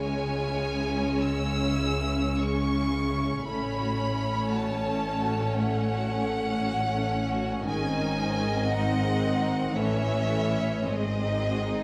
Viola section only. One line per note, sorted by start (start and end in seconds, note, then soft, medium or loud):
0.00 3.41 G#3 soft
0.00 3.41 C#4 soft
3.45 7.66 A3 soft
3.45 8.66 C#4 soft
7.67 9.73 D#3 medium
8.69 9.77 C4 medium
9.77 10.87 E3 medium
9.77 10.87 C#4 medium
10.87 11.83 G#3 soft
10.87 11.83 C4 soft